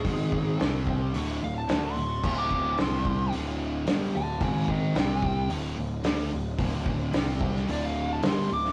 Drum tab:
CC |----------------|x---------------|----------------|----------------|
HH |o---o---o---o---|----o---o---o---|o---o---o---o---|o---o---o---o---|
SD |----o-------o---|----o-------o---|----o-------o---|----o--o----o--o|
BD |o-o---o---------|o-o---o---------|o-o---o---------|o-o---o---------|